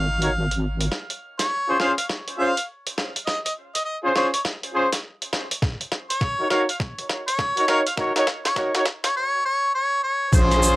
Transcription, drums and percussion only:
0.22 closed hi-hat medium
0.51 closed hi-hat soft
0.80 closed hi-hat medium
0.92 snare soft
1.10 closed hi-hat soft
1.39 snare soft
1.39 closed hi-hat medium
1.80 snare soft
1.98 closed hi-hat medium
2.10 snare soft
2.28 closed hi-hat soft
2.57 closed hi-hat medium
2.87 closed hi-hat medium
2.98 snare medium
3.16 closed hi-hat medium
3.27 snare medium
3.46 closed hi-hat medium
3.75 closed hi-hat medium
4.16 snare medium
4.34 closed hi-hat medium
4.45 snare medium
4.63 closed hi-hat soft
4.93 snare medium
4.93 closed hi-hat medium
5.22 closed hi-hat medium
5.33 snare medium
5.51 closed hi-hat medium
5.62 kick medium
5.62 snare medium
5.81 closed hi-hat medium
5.92 snare medium
6.10 closed hi-hat medium
6.21 kick loud
6.21 snare medium
6.50 snare medium
6.69 closed hi-hat medium
6.80 kick loud
6.80 snare medium
6.98 closed hi-hat soft
7.09 snare medium
7.28 closed hi-hat medium
7.39 kick loud
7.39 snare medium
7.57 closed hi-hat medium
7.68 snare medium
7.87 closed hi-hat medium
7.97 kick loud
7.97 snare medium
8.16 snare medium
8.16 closed hi-hat medium
8.27 snare loud
8.45 snare medium
8.45 closed hi-hat medium
8.56 kick loud
8.56 snare medium
8.75 snare medium
8.75 closed hi-hat soft
8.86 snare loud
9.04 snare medium
9.04 closed hi-hat medium
10.33 kick loud
10.33 crash loud
10.33 shaker medium
10.51 cross-stick soft
10.51 closed hi-hat medium
10.51 shaker soft
10.54 cross-stick soft
10.57 cross-stick soft
10.60 cross-stick soft
10.62 cross-stick soft
10.62 shaker medium
10.67 cross-stick soft
10.72 cross-stick soft

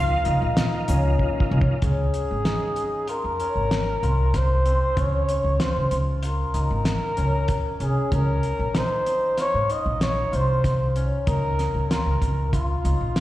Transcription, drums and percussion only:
0.25 closed hi-hat medium
0.57 snare loud
0.57 closed hi-hat medium
0.57 shaker soft
0.88 closed hi-hat medium
0.88 shaker soft
1.19 kick medium
1.40 kick medium
1.61 kick medium
1.82 kick medium
1.82 closed hi-hat medium
2.14 closed hi-hat medium
2.45 snare medium
2.45 closed hi-hat medium
2.76 closed hi-hat medium
3.08 closed hi-hat medium
3.40 closed hi-hat soft
3.71 snare medium
3.71 closed hi-hat medium
4.03 closed hi-hat soft
4.34 kick medium
4.34 snare soft
4.34 closed hi-hat medium
4.66 closed hi-hat medium
4.97 kick medium
4.97 closed hi-hat medium
5.29 closed hi-hat medium
5.60 snare medium
5.60 closed hi-hat medium
5.91 closed hi-hat medium
6.23 closed hi-hat medium
6.54 closed hi-hat medium
6.85 snare medium
6.85 closed hi-hat medium
7.17 closed hi-hat soft
7.48 kick medium
7.48 closed hi-hat medium
7.80 closed hi-hat medium
8.12 kick medium
8.12 closed hi-hat medium
8.43 closed hi-hat soft
8.75 snare loud
8.75 closed hi-hat medium
9.06 closed hi-hat medium
9.38 snare soft
9.38 closed hi-hat medium
9.70 closed hi-hat soft
10.01 snare medium
10.01 closed hi-hat medium
10.33 closed hi-hat soft
10.64 kick medium
10.64 snare soft
10.64 closed hi-hat medium
10.96 closed hi-hat medium
11.27 kick medium
11.27 closed hi-hat medium
11.59 snare soft
11.59 closed hi-hat medium
11.91 snare medium
11.91 closed hi-hat medium
12.22 kick medium
12.22 closed hi-hat medium
12.53 kick medium
12.53 closed hi-hat medium
12.85 closed hi-hat medium
13.16 snare medium
13.16 closed hi-hat medium

